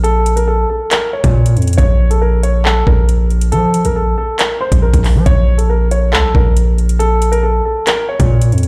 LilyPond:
<<
  \new Staff \with { instrumentName = "Grand piano" } { \time 4/4 \key bes \minor \tempo 4 = 138 a'8. bes'16 a'8 a'8 bes'8 des''4. | des''8. a'16 bes'8 des''8 a'8 bes'4. | a'8. bes'16 a'8 a'8 bes'8 c''8 bes'4 | des''8. a'16 bes'8 des''8 a'8 bes'4. |
a'8. bes'16 a'8 a'8 bes'8 des''4. | }
  \new Staff \with { instrumentName = "808-style bass" } { \clef bass \time 4/4 \key bes \minor bes,,4. r4 r16 bes,8. f,8 | bes,,2~ bes,,8 bes,,4. | f8. bes,,8. r4 r16 bes,,8 bes,,8 f16 | bes,,2 des,16 bes,,16 bes,,4.~ |
bes,,4. r4 r16 bes,8. f,8 | }
  \new DrumStaff \with { instrumentName = "Drums" } \drummode { \time 4/4 hh8 hh16 hh16 r4 <hc hh>8. <hh bd>16 r16 hh16 hh32 hh32 hh32 hh32 | <hh bd>8. hh16 r8 hh8 hc8 bd8 hh8 hh16 hh16 | hh8 hh16 hh16 r4 <hc hh>8. <hh bd>16 r16 <hh bd>16 <hc hho>8 | <hh bd>8. hh16 r8 hh8 hc8 bd8 hh8 hh16 hh16 |
hh8 hh16 hh16 r4 <hc hh>8. <hh bd>16 r16 hh16 hh32 hh32 hh16 | }
>>